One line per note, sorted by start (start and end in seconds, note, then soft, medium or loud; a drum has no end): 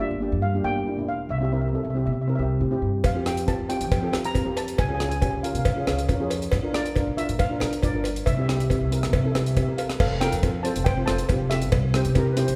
0.00 0.12 A#3 medium
0.00 0.13 D4 medium
0.00 0.13 F4 medium
0.00 0.45 E5 medium
0.11 0.33 G1 medium
0.20 0.41 A#3 medium
0.20 0.41 D4 medium
0.20 0.41 G4 medium
0.32 0.58 G2 medium
0.42 0.65 F5 medium
0.54 0.60 A#3 medium
0.54 0.61 D4 medium
0.54 0.61 G4 medium
0.64 0.97 G1 medium
0.64 0.78 A#3 medium
0.64 0.78 D4 medium
0.64 0.79 G4 medium
0.64 1.10 G5 medium
0.86 0.93 A#3 medium
0.86 0.93 D4 medium
0.86 0.94 E4 medium
0.97 1.23 E1 medium
0.97 1.23 A#3 medium
0.97 1.24 D4 medium
0.97 1.24 E4 medium
1.08 1.31 F5 medium
1.29 1.73 C2 medium
1.29 1.37 E5 medium
1.38 1.47 C4 medium
1.38 1.48 E4 medium
1.38 1.43 E5 medium
1.43 1.48 G4 medium
1.43 1.52 E5 medium
1.52 1.65 C4 medium
1.52 1.66 E4 medium
1.52 1.66 A#4 medium
1.52 1.60 E5 medium
1.61 1.67 E5 medium
1.68 1.74 E5 soft
1.73 1.87 C4 medium
1.73 1.87 E4 medium
1.73 1.88 A4 medium
1.73 1.82 E5 soft
1.83 2.08 C2 medium
1.83 1.89 E5 soft
1.90 1.97 E5 soft
1.95 2.15 C4 medium
1.95 2.15 E4 medium
1.95 2.16 G4 medium
1.95 2.05 E5 soft
2.06 2.32 C3 medium
2.06 2.11 E5 medium
2.13 2.20 E5 soft
2.21 2.27 E5 soft
2.28 2.35 C4 medium
2.28 2.35 E4 medium
2.28 2.35 A#4 medium
2.28 2.34 E5 soft
2.35 2.60 C2 medium
2.35 2.52 C4 medium
2.35 2.52 E4 medium
2.35 2.41 E5 medium
2.40 2.53 G4 medium
2.40 2.50 E5 soft
2.60 2.80 A2 medium
2.60 2.67 C4 medium
2.60 2.67 E4 medium
2.60 2.68 G4 medium
2.71 2.98 C4 medium
2.71 2.98 E4 medium
2.71 2.98 G4 medium
2.82 3.02 G2 medium
3.04 3.48 F2 medium
3.04 3.15 F5 medium
3.04 kick medium
3.04 closed hi-hat medium
3.04 cowbell medium
3.15 3.21 C4 medium
3.15 3.22 F4 medium
3.15 3.22 G4 medium
3.26 3.39 C4 medium
3.26 3.40 F4 medium
3.26 3.40 G4 medium
3.26 3.49 G5 medium
3.26 cross-stick medium
3.26 closed hi-hat medium
3.37 closed hi-hat soft
3.47 3.60 C4 medium
3.47 3.61 F4 medium
3.47 3.62 G4 medium
3.47 3.58 A5 medium
3.47 kick medium
3.47 closed hi-hat medium
3.47 cowbell medium
3.59 3.82 F2 medium
3.69 3.89 C4 medium
3.69 3.90 F4 medium
3.69 3.90 G4 medium
3.69 3.76 G5 medium
3.69 closed hi-hat medium
3.77 4.07 F3 medium
3.77 3.83 G5 medium
3.77 closed hi-hat medium
3.84 3.91 G5 medium
3.92 4.00 G5 medium
3.92 kick loud
3.92 closed hi-hat medium
3.92 cowbell medium
4.01 4.09 C4 medium
4.01 4.09 F4 medium
4.01 4.09 A4 medium
4.01 4.07 G5 medium
4.08 4.15 G5 medium
4.12 4.39 F2 medium
4.12 4.26 C4 medium
4.12 4.26 F4 medium
4.12 4.27 G4 medium
4.12 cross-stick medium
4.12 closed hi-hat medium
4.12 cowbell medium
4.24 4.58 A#5 medium
4.24 closed hi-hat medium
4.34 4.41 C4 medium
4.34 4.42 F4 medium
4.34 4.42 A#4 medium
4.34 kick medium
4.34 closed hi-hat medium
4.34 cowbell medium
4.45 4.72 F2 medium
4.45 4.71 C4 medium
4.45 4.72 F4 medium
4.45 4.72 G4 medium
4.57 4.79 A5 medium
4.57 closed hi-hat medium
4.57 cowbell medium
4.68 closed hi-hat medium
4.78 5.22 C#2 medium
4.78 4.87 G#5 medium
4.78 kick medium
4.78 closed hi-hat medium
4.78 cowbell medium
4.88 4.95 C#4 medium
4.88 4.96 F4 medium
4.88 4.96 G#4 medium
4.88 4.94 G#5 medium
4.95 5.01 G#5 medium
4.99 5.13 C#4 medium
4.99 5.13 F4 medium
4.99 5.14 G#4 medium
4.99 5.08 G#5 medium
4.99 cross-stick medium
4.99 closed hi-hat medium
5.09 5.16 G#5 medium
5.09 closed hi-hat medium
5.17 5.21 G#5 medium
5.21 5.35 C#4 medium
5.21 5.35 F4 medium
5.21 5.36 G4 medium
5.21 5.29 G#5 medium
5.21 kick medium
5.21 closed hi-hat medium
5.21 cowbell medium
5.31 5.56 C#2 medium
5.31 5.39 G#5 medium
5.43 5.63 C#4 medium
5.43 5.64 F4 medium
5.43 5.64 A#4 medium
5.43 5.50 F5 medium
5.43 closed hi-hat medium
5.51 5.80 C#3 medium
5.51 5.58 F5 soft
5.55 5.65 F5 medium
5.55 closed hi-hat medium
5.65 kick medium
5.65 closed hi-hat medium
5.65 cowbell medium
5.73 5.83 C#4 medium
5.73 5.83 F4 medium
5.73 5.80 F5 medium
5.78 5.84 G#4 medium
5.78 5.88 F5 soft
5.87 6.19 C#2 medium
5.87 6.00 C#4 medium
5.87 6.01 F4 medium
5.87 6.01 G#4 medium
5.87 5.96 F5 medium
5.87 cross-stick medium
5.87 closed hi-hat medium
5.87 cowbell medium
5.97 6.04 F5 soft
5.97 closed hi-hat medium
6.09 6.16 C#4 medium
6.09 6.16 F4 medium
6.09 6.17 A#4 medium
6.09 kick medium
6.09 closed hi-hat medium
6.09 cowbell medium
6.19 6.45 F2 medium
6.19 6.46 C#4 medium
6.19 6.46 F4 medium
6.19 6.47 G#4 medium
6.30 closed hi-hat medium
6.30 cowbell medium
6.42 closed hi-hat soft
6.52 6.96 A#1 medium
6.52 kick loud
6.52 closed hi-hat medium
6.52 cowbell medium
6.63 6.70 D4 medium
6.63 6.70 F4 medium
6.63 6.70 A#4 medium
6.73 6.87 D4 medium
6.73 6.87 F4 medium
6.73 6.88 A#4 medium
6.73 7.14 D5 medium
6.73 cross-stick medium
6.73 closed hi-hat medium
6.86 closed hi-hat medium
6.95 7.09 D4 medium
6.95 7.09 F4 medium
6.95 7.10 A#4 medium
6.95 kick medium
6.95 closed hi-hat medium
6.95 cowbell medium
7.07 7.30 A#1 medium
7.17 7.37 D4 medium
7.17 7.38 F4 medium
7.17 7.38 A#4 medium
7.17 7.40 E5 medium
7.17 closed hi-hat medium
7.29 7.54 A#2 medium
7.29 closed hi-hat medium
7.39 7.84 F5 medium
7.39 kick medium
7.39 closed hi-hat medium
7.39 cowbell medium
7.50 7.56 D4 medium
7.50 7.57 F4 medium
7.50 7.58 A#4 medium
7.60 7.94 A#1 medium
7.60 7.74 D4 medium
7.60 7.75 F4 medium
7.60 7.75 A#4 medium
7.60 cross-stick medium
7.60 closed hi-hat medium
7.60 cowbell medium
7.73 closed hi-hat medium
7.82 7.89 D4 medium
7.82 7.90 F4 medium
7.82 7.90 A#4 medium
7.82 8.28 D5 medium
7.82 kick medium
7.82 closed hi-hat medium
7.82 cowbell medium
7.94 8.20 G1 medium
7.94 8.20 D4 medium
7.94 8.20 F4 medium
7.94 8.21 A#4 medium
8.04 closed hi-hat medium
8.04 cowbell medium
8.16 closed hi-hat medium
8.26 8.70 C2 medium
8.26 8.33 E5 medium
8.26 kick medium
8.26 closed hi-hat medium
8.26 cowbell medium
8.34 8.44 C4 medium
8.34 8.44 E4 medium
8.34 8.40 E5 medium
8.39 8.45 G4 medium
8.39 8.47 E5 medium
8.48 8.61 C4 medium
8.48 8.62 E4 medium
8.48 8.62 G4 medium
8.48 cross-stick medium
8.48 closed hi-hat medium
8.57 8.63 E5 medium
8.57 closed hi-hat medium
8.64 8.70 E5 medium
8.70 8.83 C4 medium
8.70 8.84 E4 medium
8.70 8.84 G4 medium
8.70 8.78 E5 medium
8.70 kick medium
8.70 closed hi-hat medium
8.70 cowbell medium
8.79 9.04 C2 medium
8.79 8.83 E5 soft
8.85 8.92 E5 medium
8.91 9.11 C4 medium
8.91 9.11 E4 medium
8.91 9.12 A#4 medium
8.91 9.00 E5 soft
8.91 closed hi-hat medium
9.01 9.28 C3 medium
9.01 9.08 E5 medium
9.01 cross-stick medium
9.01 closed hi-hat medium
9.09 9.16 E5 soft
9.09 cowbell medium
9.13 9.22 E5 medium
9.13 kick loud
9.13 closed hi-hat medium
9.23 9.31 C4 medium
9.23 9.31 E4 medium
9.23 9.31 A4 medium
9.23 9.30 E5 soft
9.32 9.68 C2 medium
9.32 9.48 C4 medium
9.32 9.48 E4 medium
9.32 9.37 E5 medium
9.32 cross-stick medium
9.32 closed hi-hat medium
9.32 cowbell medium
9.36 9.49 G4 medium
9.36 9.46 E5 soft
9.46 9.54 E5 medium
9.46 closed hi-hat medium
9.55 9.63 C4 medium
9.55 9.63 E4 medium
9.55 9.64 G4 medium
9.55 9.61 E5 soft
9.55 kick medium
9.55 closed hi-hat medium
9.55 cowbell medium
9.63 9.69 E5 medium
9.67 9.94 A#1 medium
9.67 9.93 C4 medium
9.67 9.93 E4 medium
9.67 9.94 A#4 medium
9.78 9.98 A4 soft
9.78 9.99 F5 medium
9.78 closed hi-hat medium
9.78 cowbell medium
9.90 cross-stick medium
9.90 closed hi-hat soft
10.00 10.26 F1 medium
10.00 10.20 A4 medium
10.00 10.22 F5 medium
10.00 kick loud
10.00 crash loud
10.00 cowbell loud
10.21 10.34 C4 medium
10.21 10.35 F4 medium
10.21 10.35 A4 medium
10.21 10.62 A#4 medium
10.21 10.61 G5 medium
10.21 cross-stick medium
10.21 closed hi-hat medium
10.32 10.67 F2 medium
10.32 closed hi-hat medium
10.42 10.56 C4 medium
10.42 10.56 F4 medium
10.42 10.57 A4 medium
10.42 kick medium
10.42 closed hi-hat medium
10.42 cowbell medium
10.63 10.84 C4 medium
10.63 10.84 F4 medium
10.63 10.85 A4 medium
10.63 10.84 C5 medium
10.63 10.86 A5 medium
10.63 closed hi-hat medium
10.76 11.01 F1 medium
10.76 closed hi-hat medium
10.84 11.06 C5 medium
10.84 11.08 G5 medium
10.84 kick loud
10.84 closed hi-hat medium
10.84 cowbell loud
10.97 11.04 C4 medium
10.97 11.04 F4 medium
10.97 11.05 C5 medium
11.06 11.17 F1 medium
11.06 11.21 C4 medium
11.06 11.21 F4 medium
11.06 11.47 C5 medium
11.06 11.51 A5 medium
11.06 cross-stick medium
11.06 closed hi-hat medium
11.10 11.22 A4 medium
11.18 closed hi-hat medium
11.29 11.73 F1 medium
11.29 11.43 C4 medium
11.29 11.44 F4 medium
11.29 11.44 G4 medium
11.29 kick medium
11.29 closed hi-hat medium
11.29 cowbell medium
11.50 11.73 C4 medium
11.50 11.73 F4 medium
11.50 12.55 G4 medium
11.50 11.74 A4 medium
11.50 12.55 E5 medium
11.50 cross-stick medium
11.50 closed hi-hat medium
11.62 closed hi-hat medium
11.72 11.98 C2 medium
11.72 kick loud
11.72 closed hi-hat medium
11.72 cowbell loud
11.94 12.07 C4 medium
11.94 12.08 E4 medium
11.94 12.08 G4 medium
11.94 12.00 C5 loud
11.94 cross-stick medium
11.94 closed hi-hat medium
12.05 12.39 C3 medium
12.05 closed hi-hat medium
12.15 12.29 C4 medium
12.15 12.29 E4 medium
12.15 12.30 G4 medium
12.15 12.30 A#4 loud
12.15 kick medium
12.15 closed hi-hat medium
12.15 cowbell medium
12.31 12.39 B4 medium
12.37 12.55 C4 medium
12.37 12.55 E4 medium
12.37 12.55 G4 medium
12.37 12.55 C5 loud
12.37 closed hi-hat medium
12.48 12.55 C2 medium
12.48 closed hi-hat medium